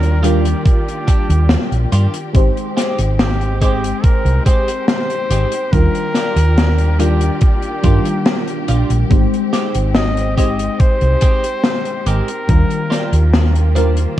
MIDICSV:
0, 0, Header, 1, 8, 480
1, 0, Start_track
1, 0, Key_signature, -3, "major"
1, 0, Tempo, 845070
1, 1333, Time_signature, 4, 2, 24, 8
1, 8063, End_track
2, 0, Start_track
2, 0, Title_t, "Flugelhorn"
2, 0, Program_c, 0, 56
2, 0, Note_on_c, 0, 70, 125
2, 135, Note_on_c, 0, 67, 93
2, 144, Note_off_c, 0, 70, 0
2, 370, Note_off_c, 0, 67, 0
2, 374, Note_on_c, 0, 67, 95
2, 1071, Note_off_c, 0, 67, 0
2, 1817, Note_on_c, 0, 67, 97
2, 2038, Note_off_c, 0, 67, 0
2, 2049, Note_on_c, 0, 67, 92
2, 2293, Note_on_c, 0, 70, 111
2, 2302, Note_off_c, 0, 67, 0
2, 2527, Note_off_c, 0, 70, 0
2, 2531, Note_on_c, 0, 72, 113
2, 2755, Note_off_c, 0, 72, 0
2, 2771, Note_on_c, 0, 72, 115
2, 3252, Note_on_c, 0, 70, 126
2, 3260, Note_off_c, 0, 72, 0
2, 3976, Note_on_c, 0, 67, 95
2, 3985, Note_off_c, 0, 70, 0
2, 4213, Note_off_c, 0, 67, 0
2, 4216, Note_on_c, 0, 67, 95
2, 4912, Note_off_c, 0, 67, 0
2, 5651, Note_on_c, 0, 75, 114
2, 5875, Note_off_c, 0, 75, 0
2, 5892, Note_on_c, 0, 75, 103
2, 6134, Note_on_c, 0, 72, 121
2, 6143, Note_off_c, 0, 75, 0
2, 6857, Note_on_c, 0, 70, 105
2, 6866, Note_off_c, 0, 72, 0
2, 7815, Note_off_c, 0, 70, 0
2, 8063, End_track
3, 0, Start_track
3, 0, Title_t, "Clean electric guitar"
3, 0, Program_c, 1, 27
3, 130, Note_on_c, 1, 65, 109
3, 133, Note_on_c, 1, 62, 77
3, 135, Note_on_c, 1, 55, 82
3, 255, Note_off_c, 1, 55, 0
3, 256, Note_off_c, 1, 62, 0
3, 256, Note_off_c, 1, 65, 0
3, 611, Note_on_c, 1, 67, 103
3, 613, Note_on_c, 1, 62, 81
3, 614, Note_on_c, 1, 55, 78
3, 736, Note_off_c, 1, 55, 0
3, 736, Note_off_c, 1, 62, 0
3, 736, Note_off_c, 1, 67, 0
3, 1092, Note_on_c, 1, 65, 101
3, 1094, Note_on_c, 1, 62, 85
3, 1095, Note_on_c, 1, 55, 81
3, 1216, Note_off_c, 1, 55, 0
3, 1217, Note_off_c, 1, 62, 0
3, 1217, Note_off_c, 1, 65, 0
3, 1572, Note_on_c, 1, 67, 97
3, 1574, Note_on_c, 1, 60, 80
3, 1577, Note_on_c, 1, 56, 78
3, 1696, Note_off_c, 1, 56, 0
3, 1697, Note_off_c, 1, 60, 0
3, 1697, Note_off_c, 1, 67, 0
3, 2054, Note_on_c, 1, 56, 97
3, 2058, Note_on_c, 1, 60, 76
3, 2058, Note_on_c, 1, 67, 99
3, 2177, Note_off_c, 1, 56, 0
3, 2178, Note_off_c, 1, 60, 0
3, 2179, Note_off_c, 1, 67, 0
3, 2533, Note_on_c, 1, 56, 99
3, 2537, Note_on_c, 1, 60, 71
3, 2537, Note_on_c, 1, 67, 103
3, 2657, Note_off_c, 1, 56, 0
3, 2658, Note_off_c, 1, 60, 0
3, 2658, Note_off_c, 1, 67, 0
3, 3014, Note_on_c, 1, 60, 84
3, 3014, Note_on_c, 1, 67, 96
3, 3017, Note_on_c, 1, 56, 85
3, 3137, Note_off_c, 1, 56, 0
3, 3137, Note_off_c, 1, 60, 0
3, 3137, Note_off_c, 1, 67, 0
3, 3494, Note_on_c, 1, 65, 96
3, 3497, Note_on_c, 1, 55, 72
3, 3497, Note_on_c, 1, 62, 72
3, 3617, Note_off_c, 1, 55, 0
3, 3618, Note_off_c, 1, 62, 0
3, 3618, Note_off_c, 1, 65, 0
3, 3975, Note_on_c, 1, 65, 104
3, 3978, Note_on_c, 1, 62, 82
3, 3979, Note_on_c, 1, 55, 86
3, 4097, Note_off_c, 1, 55, 0
3, 4098, Note_off_c, 1, 62, 0
3, 4098, Note_off_c, 1, 65, 0
3, 4454, Note_on_c, 1, 65, 100
3, 4455, Note_on_c, 1, 62, 73
3, 4457, Note_on_c, 1, 55, 82
3, 4577, Note_off_c, 1, 55, 0
3, 4577, Note_off_c, 1, 62, 0
3, 4578, Note_off_c, 1, 65, 0
3, 4933, Note_on_c, 1, 65, 104
3, 4934, Note_on_c, 1, 62, 85
3, 4937, Note_on_c, 1, 55, 88
3, 5056, Note_off_c, 1, 55, 0
3, 5056, Note_off_c, 1, 62, 0
3, 5057, Note_off_c, 1, 65, 0
3, 5412, Note_on_c, 1, 67, 101
3, 5416, Note_on_c, 1, 60, 69
3, 5417, Note_on_c, 1, 56, 80
3, 5537, Note_off_c, 1, 56, 0
3, 5537, Note_off_c, 1, 60, 0
3, 5537, Note_off_c, 1, 67, 0
3, 5892, Note_on_c, 1, 67, 101
3, 5896, Note_on_c, 1, 60, 82
3, 5897, Note_on_c, 1, 56, 83
3, 6017, Note_off_c, 1, 56, 0
3, 6017, Note_off_c, 1, 67, 0
3, 6018, Note_off_c, 1, 60, 0
3, 6373, Note_on_c, 1, 67, 104
3, 6374, Note_on_c, 1, 60, 76
3, 6376, Note_on_c, 1, 56, 87
3, 6496, Note_off_c, 1, 56, 0
3, 6497, Note_off_c, 1, 60, 0
3, 6497, Note_off_c, 1, 67, 0
3, 6853, Note_on_c, 1, 67, 102
3, 6855, Note_on_c, 1, 60, 84
3, 6857, Note_on_c, 1, 56, 85
3, 6977, Note_off_c, 1, 56, 0
3, 6977, Note_off_c, 1, 60, 0
3, 6977, Note_off_c, 1, 67, 0
3, 7329, Note_on_c, 1, 65, 102
3, 7332, Note_on_c, 1, 62, 82
3, 7334, Note_on_c, 1, 55, 78
3, 7455, Note_off_c, 1, 55, 0
3, 7455, Note_off_c, 1, 65, 0
3, 7456, Note_off_c, 1, 62, 0
3, 7812, Note_on_c, 1, 72, 81
3, 7816, Note_on_c, 1, 62, 74
3, 7816, Note_on_c, 1, 65, 102
3, 7817, Note_on_c, 1, 55, 76
3, 7937, Note_off_c, 1, 55, 0
3, 7937, Note_off_c, 1, 62, 0
3, 7938, Note_off_c, 1, 65, 0
3, 8037, Note_off_c, 1, 72, 0
3, 8063, End_track
4, 0, Start_track
4, 0, Title_t, "FM electric piano"
4, 0, Program_c, 2, 5
4, 0, Control_c, 2, 64, 127
4, 0, Note_on_c, 2, 51, 66
4, 0, Note_on_c, 2, 55, 74
4, 0, Note_on_c, 2, 62, 64
4, 0, Note_on_c, 2, 65, 67
4, 0, Note_on_c, 2, 70, 85
4, 102, Note_off_c, 2, 55, 0
4, 104, Note_off_c, 2, 62, 0
4, 106, Note_off_c, 2, 51, 0
4, 108, Note_off_c, 2, 65, 0
4, 110, Note_off_c, 2, 70, 0
4, 128, Note_on_c, 2, 55, 75
4, 133, Note_on_c, 2, 62, 66
4, 136, Note_on_c, 2, 51, 67
4, 140, Note_on_c, 2, 65, 71
4, 144, Note_on_c, 2, 70, 85
4, 1302, Note_off_c, 2, 55, 0
4, 1305, Note_off_c, 2, 62, 0
4, 1307, Note_off_c, 2, 51, 0
4, 1309, Note_off_c, 2, 65, 0
4, 1311, Note_off_c, 2, 70, 0
4, 1324, Note_on_c, 2, 56, 79
4, 1328, Note_on_c, 2, 60, 76
4, 1333, Note_on_c, 2, 63, 74
4, 1337, Note_on_c, 2, 67, 74
4, 1340, Control_c, 2, 64, 0
4, 1341, Note_on_c, 2, 72, 95
4, 1451, Control_c, 2, 64, 127
4, 2020, Note_off_c, 2, 56, 0
4, 2022, Note_off_c, 2, 60, 0
4, 2025, Note_off_c, 2, 63, 0
4, 2027, Note_off_c, 2, 67, 0
4, 2029, Note_off_c, 2, 72, 0
4, 2047, Note_on_c, 2, 56, 71
4, 2052, Note_on_c, 2, 60, 70
4, 2056, Note_on_c, 2, 63, 65
4, 2060, Note_on_c, 2, 67, 65
4, 2064, Note_on_c, 2, 72, 85
4, 3222, Note_off_c, 2, 56, 0
4, 3225, Note_off_c, 2, 60, 0
4, 3227, Note_off_c, 2, 63, 0
4, 3229, Note_off_c, 2, 67, 0
4, 3231, Note_off_c, 2, 72, 0
4, 3248, Note_on_c, 2, 55, 72
4, 3252, Note_on_c, 2, 62, 69
4, 3256, Note_on_c, 2, 51, 67
4, 3259, Control_c, 2, 64, 0
4, 3261, Note_on_c, 2, 65, 66
4, 3266, Note_on_c, 2, 70, 81
4, 3360, Control_c, 2, 64, 127
4, 3943, Note_off_c, 2, 55, 0
4, 3945, Note_off_c, 2, 62, 0
4, 3947, Note_off_c, 2, 51, 0
4, 3949, Note_off_c, 2, 65, 0
4, 3951, Note_off_c, 2, 70, 0
4, 3970, Note_on_c, 2, 55, 74
4, 3971, Note_on_c, 2, 62, 71
4, 3973, Note_on_c, 2, 51, 67
4, 3976, Note_on_c, 2, 65, 69
4, 3979, Note_on_c, 2, 70, 79
4, 4428, Note_off_c, 2, 55, 0
4, 4429, Note_off_c, 2, 62, 0
4, 4430, Note_off_c, 2, 51, 0
4, 4431, Note_off_c, 2, 65, 0
4, 4433, Note_off_c, 2, 70, 0
4, 4446, Note_on_c, 2, 55, 83
4, 4449, Note_on_c, 2, 62, 78
4, 4454, Note_on_c, 2, 51, 78
4, 4459, Note_on_c, 2, 65, 75
4, 4463, Note_on_c, 2, 70, 87
4, 5142, Note_off_c, 2, 55, 0
4, 5143, Note_off_c, 2, 62, 0
4, 5146, Note_off_c, 2, 51, 0
4, 5148, Note_off_c, 2, 65, 0
4, 5150, Note_off_c, 2, 70, 0
4, 5166, Note_on_c, 2, 56, 81
4, 5170, Note_on_c, 2, 60, 72
4, 5175, Note_on_c, 2, 63, 75
4, 5179, Note_on_c, 2, 67, 75
4, 5182, Control_c, 2, 64, 0
4, 5183, Note_on_c, 2, 72, 91
4, 5291, Control_c, 2, 64, 127
4, 5862, Note_off_c, 2, 56, 0
4, 5864, Note_off_c, 2, 60, 0
4, 5866, Note_off_c, 2, 63, 0
4, 5868, Note_off_c, 2, 67, 0
4, 5870, Note_off_c, 2, 72, 0
4, 5888, Note_on_c, 2, 56, 75
4, 5892, Note_on_c, 2, 60, 67
4, 5896, Note_on_c, 2, 63, 66
4, 5902, Note_on_c, 2, 67, 65
4, 5906, Note_on_c, 2, 72, 82
4, 7063, Note_off_c, 2, 56, 0
4, 7065, Note_off_c, 2, 60, 0
4, 7067, Note_off_c, 2, 63, 0
4, 7069, Note_off_c, 2, 67, 0
4, 7072, Note_off_c, 2, 72, 0
4, 7086, Note_on_c, 2, 55, 71
4, 7091, Note_on_c, 2, 62, 67
4, 7094, Note_on_c, 2, 51, 68
4, 7099, Note_on_c, 2, 65, 66
4, 7102, Control_c, 2, 64, 0
4, 7103, Note_on_c, 2, 70, 81
4, 7206, Control_c, 2, 64, 127
4, 7782, Note_off_c, 2, 55, 0
4, 7784, Note_off_c, 2, 62, 0
4, 7786, Note_off_c, 2, 51, 0
4, 7788, Note_off_c, 2, 65, 0
4, 7790, Note_off_c, 2, 70, 0
4, 7805, Note_on_c, 2, 55, 72
4, 7813, Note_on_c, 2, 51, 68
4, 7818, Note_on_c, 2, 65, 67
4, 7823, Note_on_c, 2, 70, 83
4, 8063, Note_off_c, 2, 51, 0
4, 8063, Note_off_c, 2, 55, 0
4, 8063, Note_off_c, 2, 65, 0
4, 8063, Note_off_c, 2, 70, 0
4, 8063, End_track
5, 0, Start_track
5, 0, Title_t, "String section"
5, 0, Program_c, 3, 48
5, 0, Note_on_c, 3, 51, 88
5, 0, Note_on_c, 3, 58, 80
5, 0, Note_on_c, 3, 65, 82
5, 0, Note_on_c, 3, 67, 97
5, 0, Note_on_c, 3, 74, 78
5, 1314, Note_off_c, 3, 51, 0
5, 1314, Note_off_c, 3, 65, 0
5, 1315, Note_off_c, 3, 58, 0
5, 1315, Note_off_c, 3, 74, 0
5, 1330, Note_on_c, 3, 56, 84
5, 1331, Note_on_c, 3, 60, 81
5, 3233, Note_off_c, 3, 56, 0
5, 3233, Note_off_c, 3, 60, 0
5, 3254, Note_on_c, 3, 51, 85
5, 3254, Note_on_c, 3, 58, 80
5, 3255, Note_on_c, 3, 65, 78
5, 3255, Note_on_c, 3, 74, 79
5, 5154, Note_off_c, 3, 58, 0
5, 5155, Note_off_c, 3, 51, 0
5, 5155, Note_off_c, 3, 65, 0
5, 5155, Note_off_c, 3, 74, 0
5, 5174, Note_on_c, 3, 56, 85
5, 5175, Note_on_c, 3, 60, 78
5, 7074, Note_off_c, 3, 56, 0
5, 7075, Note_off_c, 3, 60, 0
5, 7091, Note_on_c, 3, 65, 79
5, 7093, Note_on_c, 3, 51, 87
5, 7093, Note_on_c, 3, 58, 84
5, 8063, Note_off_c, 3, 51, 0
5, 8063, Note_off_c, 3, 58, 0
5, 8063, Note_off_c, 3, 65, 0
5, 8063, Note_off_c, 3, 67, 0
5, 8063, End_track
6, 0, Start_track
6, 0, Title_t, "Fingered electric bass"
6, 0, Program_c, 4, 33
6, 0, Note_on_c, 4, 39, 89
6, 299, Note_off_c, 4, 39, 0
6, 735, Note_on_c, 4, 39, 86
6, 878, Note_off_c, 4, 39, 0
6, 975, Note_on_c, 4, 34, 86
6, 1046, Note_off_c, 4, 34, 0
6, 1092, Note_on_c, 4, 43, 94
6, 1167, Note_off_c, 4, 43, 0
6, 1332, Note_on_c, 4, 32, 98
6, 1408, Note_off_c, 4, 32, 0
6, 1696, Note_on_c, 4, 32, 87
6, 2219, Note_off_c, 4, 32, 0
6, 2414, Note_on_c, 4, 36, 91
6, 2486, Note_off_c, 4, 36, 0
6, 3011, Note_on_c, 4, 32, 98
6, 3087, Note_off_c, 4, 32, 0
6, 3253, Note_on_c, 4, 39, 103
6, 3328, Note_off_c, 4, 39, 0
6, 3613, Note_on_c, 4, 39, 85
6, 4138, Note_off_c, 4, 39, 0
6, 4454, Note_on_c, 4, 43, 90
6, 4528, Note_off_c, 4, 43, 0
6, 4934, Note_on_c, 4, 34, 81
6, 5009, Note_off_c, 4, 34, 0
6, 5055, Note_on_c, 4, 34, 94
6, 5127, Note_off_c, 4, 34, 0
6, 5173, Note_on_c, 4, 32, 98
6, 5248, Note_off_c, 4, 32, 0
6, 5537, Note_on_c, 4, 32, 86
6, 6060, Note_off_c, 4, 32, 0
6, 6257, Note_on_c, 4, 36, 84
6, 6328, Note_off_c, 4, 36, 0
6, 6851, Note_on_c, 4, 32, 102
6, 6927, Note_off_c, 4, 32, 0
6, 7093, Note_on_c, 4, 39, 102
6, 7168, Note_off_c, 4, 39, 0
6, 7455, Note_on_c, 4, 39, 93
6, 7979, Note_off_c, 4, 39, 0
6, 8063, End_track
7, 0, Start_track
7, 0, Title_t, "Muted fingered electric bass strokes"
7, 2293, Note_on_c, 9, 29, 44
7, 2350, Note_off_c, 9, 29, 0
7, 6133, Note_on_c, 9, 29, 43
7, 6190, Note_off_c, 9, 29, 0
7, 8063, End_track
8, 0, Start_track
8, 0, Title_t, "Drums"
8, 16, Note_on_c, 9, 42, 44
8, 73, Note_off_c, 9, 42, 0
8, 136, Note_on_c, 9, 42, 108
8, 193, Note_off_c, 9, 42, 0
8, 257, Note_on_c, 9, 42, 71
8, 314, Note_off_c, 9, 42, 0
8, 372, Note_on_c, 9, 36, 122
8, 378, Note_on_c, 9, 42, 62
8, 429, Note_off_c, 9, 36, 0
8, 435, Note_off_c, 9, 42, 0
8, 502, Note_on_c, 9, 42, 46
8, 559, Note_off_c, 9, 42, 0
8, 613, Note_on_c, 9, 36, 100
8, 613, Note_on_c, 9, 42, 101
8, 670, Note_off_c, 9, 36, 0
8, 670, Note_off_c, 9, 42, 0
8, 738, Note_on_c, 9, 42, 70
8, 795, Note_off_c, 9, 42, 0
8, 847, Note_on_c, 9, 38, 127
8, 856, Note_on_c, 9, 42, 69
8, 904, Note_off_c, 9, 38, 0
8, 912, Note_off_c, 9, 42, 0
8, 978, Note_on_c, 9, 42, 50
8, 1035, Note_off_c, 9, 42, 0
8, 1092, Note_on_c, 9, 42, 103
8, 1149, Note_off_c, 9, 42, 0
8, 1214, Note_on_c, 9, 42, 64
8, 1270, Note_off_c, 9, 42, 0
8, 1333, Note_on_c, 9, 36, 123
8, 1334, Note_on_c, 9, 42, 69
8, 1390, Note_off_c, 9, 36, 0
8, 1391, Note_off_c, 9, 42, 0
8, 1460, Note_on_c, 9, 42, 46
8, 1517, Note_off_c, 9, 42, 0
8, 1575, Note_on_c, 9, 38, 61
8, 1576, Note_on_c, 9, 42, 104
8, 1632, Note_off_c, 9, 38, 0
8, 1633, Note_off_c, 9, 42, 0
8, 1695, Note_on_c, 9, 42, 72
8, 1751, Note_off_c, 9, 42, 0
8, 1813, Note_on_c, 9, 38, 122
8, 1813, Note_on_c, 9, 42, 70
8, 1870, Note_off_c, 9, 38, 0
8, 1870, Note_off_c, 9, 42, 0
8, 1937, Note_on_c, 9, 42, 40
8, 1993, Note_off_c, 9, 42, 0
8, 2053, Note_on_c, 9, 36, 65
8, 2053, Note_on_c, 9, 42, 90
8, 2110, Note_off_c, 9, 36, 0
8, 2110, Note_off_c, 9, 42, 0
8, 2181, Note_on_c, 9, 42, 65
8, 2238, Note_off_c, 9, 42, 0
8, 2293, Note_on_c, 9, 36, 120
8, 2294, Note_on_c, 9, 42, 62
8, 2350, Note_off_c, 9, 36, 0
8, 2351, Note_off_c, 9, 42, 0
8, 2418, Note_on_c, 9, 42, 44
8, 2474, Note_off_c, 9, 42, 0
8, 2534, Note_on_c, 9, 36, 105
8, 2534, Note_on_c, 9, 42, 111
8, 2590, Note_off_c, 9, 36, 0
8, 2591, Note_off_c, 9, 42, 0
8, 2658, Note_on_c, 9, 42, 78
8, 2714, Note_off_c, 9, 42, 0
8, 2772, Note_on_c, 9, 38, 126
8, 2775, Note_on_c, 9, 42, 63
8, 2828, Note_off_c, 9, 38, 0
8, 2832, Note_off_c, 9, 42, 0
8, 2896, Note_on_c, 9, 42, 47
8, 2952, Note_off_c, 9, 42, 0
8, 3013, Note_on_c, 9, 42, 94
8, 3070, Note_off_c, 9, 42, 0
8, 3133, Note_on_c, 9, 42, 67
8, 3190, Note_off_c, 9, 42, 0
8, 3254, Note_on_c, 9, 36, 121
8, 3254, Note_on_c, 9, 42, 67
8, 3311, Note_off_c, 9, 36, 0
8, 3311, Note_off_c, 9, 42, 0
8, 3379, Note_on_c, 9, 42, 47
8, 3436, Note_off_c, 9, 42, 0
8, 3490, Note_on_c, 9, 38, 61
8, 3493, Note_on_c, 9, 42, 100
8, 3547, Note_off_c, 9, 38, 0
8, 3550, Note_off_c, 9, 42, 0
8, 3615, Note_on_c, 9, 42, 73
8, 3672, Note_off_c, 9, 42, 0
8, 3735, Note_on_c, 9, 42, 63
8, 3736, Note_on_c, 9, 38, 121
8, 3791, Note_off_c, 9, 42, 0
8, 3793, Note_off_c, 9, 38, 0
8, 3852, Note_on_c, 9, 42, 41
8, 3909, Note_off_c, 9, 42, 0
8, 3974, Note_on_c, 9, 42, 90
8, 4031, Note_off_c, 9, 42, 0
8, 4095, Note_on_c, 9, 42, 65
8, 4151, Note_off_c, 9, 42, 0
8, 4208, Note_on_c, 9, 42, 61
8, 4213, Note_on_c, 9, 36, 125
8, 4265, Note_off_c, 9, 42, 0
8, 4270, Note_off_c, 9, 36, 0
8, 4330, Note_on_c, 9, 42, 47
8, 4387, Note_off_c, 9, 42, 0
8, 4450, Note_on_c, 9, 42, 89
8, 4453, Note_on_c, 9, 36, 101
8, 4507, Note_off_c, 9, 42, 0
8, 4510, Note_off_c, 9, 36, 0
8, 4574, Note_on_c, 9, 42, 78
8, 4631, Note_off_c, 9, 42, 0
8, 4690, Note_on_c, 9, 42, 74
8, 4692, Note_on_c, 9, 38, 127
8, 4746, Note_off_c, 9, 42, 0
8, 4749, Note_off_c, 9, 38, 0
8, 4814, Note_on_c, 9, 42, 46
8, 4870, Note_off_c, 9, 42, 0
8, 4931, Note_on_c, 9, 42, 98
8, 4988, Note_off_c, 9, 42, 0
8, 5056, Note_on_c, 9, 42, 68
8, 5113, Note_off_c, 9, 42, 0
8, 5173, Note_on_c, 9, 36, 118
8, 5173, Note_on_c, 9, 42, 62
8, 5230, Note_off_c, 9, 36, 0
8, 5230, Note_off_c, 9, 42, 0
8, 5303, Note_on_c, 9, 42, 45
8, 5360, Note_off_c, 9, 42, 0
8, 5413, Note_on_c, 9, 38, 59
8, 5415, Note_on_c, 9, 42, 94
8, 5470, Note_off_c, 9, 38, 0
8, 5471, Note_off_c, 9, 42, 0
8, 5535, Note_on_c, 9, 42, 67
8, 5592, Note_off_c, 9, 42, 0
8, 5649, Note_on_c, 9, 38, 119
8, 5651, Note_on_c, 9, 42, 64
8, 5706, Note_off_c, 9, 38, 0
8, 5708, Note_off_c, 9, 42, 0
8, 5777, Note_on_c, 9, 42, 45
8, 5833, Note_off_c, 9, 42, 0
8, 5894, Note_on_c, 9, 36, 59
8, 5897, Note_on_c, 9, 42, 97
8, 5951, Note_off_c, 9, 36, 0
8, 5954, Note_off_c, 9, 42, 0
8, 6016, Note_on_c, 9, 42, 59
8, 6073, Note_off_c, 9, 42, 0
8, 6133, Note_on_c, 9, 42, 60
8, 6134, Note_on_c, 9, 36, 113
8, 6190, Note_off_c, 9, 42, 0
8, 6191, Note_off_c, 9, 36, 0
8, 6254, Note_on_c, 9, 42, 43
8, 6311, Note_off_c, 9, 42, 0
8, 6367, Note_on_c, 9, 42, 101
8, 6374, Note_on_c, 9, 36, 104
8, 6424, Note_off_c, 9, 42, 0
8, 6431, Note_off_c, 9, 36, 0
8, 6496, Note_on_c, 9, 42, 61
8, 6553, Note_off_c, 9, 42, 0
8, 6609, Note_on_c, 9, 38, 113
8, 6611, Note_on_c, 9, 42, 72
8, 6666, Note_off_c, 9, 38, 0
8, 6667, Note_off_c, 9, 42, 0
8, 6732, Note_on_c, 9, 42, 47
8, 6789, Note_off_c, 9, 42, 0
8, 6852, Note_on_c, 9, 42, 85
8, 6909, Note_off_c, 9, 42, 0
8, 6976, Note_on_c, 9, 42, 63
8, 7033, Note_off_c, 9, 42, 0
8, 7093, Note_on_c, 9, 42, 63
8, 7094, Note_on_c, 9, 36, 115
8, 7149, Note_off_c, 9, 42, 0
8, 7151, Note_off_c, 9, 36, 0
8, 7216, Note_on_c, 9, 42, 45
8, 7273, Note_off_c, 9, 42, 0
8, 7336, Note_on_c, 9, 38, 57
8, 7338, Note_on_c, 9, 42, 86
8, 7393, Note_off_c, 9, 38, 0
8, 7395, Note_off_c, 9, 42, 0
8, 7457, Note_on_c, 9, 42, 60
8, 7514, Note_off_c, 9, 42, 0
8, 7574, Note_on_c, 9, 38, 110
8, 7576, Note_on_c, 9, 42, 64
8, 7631, Note_off_c, 9, 38, 0
8, 7633, Note_off_c, 9, 42, 0
8, 7699, Note_on_c, 9, 42, 43
8, 7755, Note_off_c, 9, 42, 0
8, 7816, Note_on_c, 9, 42, 85
8, 7872, Note_off_c, 9, 42, 0
8, 7933, Note_on_c, 9, 42, 57
8, 7990, Note_off_c, 9, 42, 0
8, 8063, End_track
0, 0, End_of_file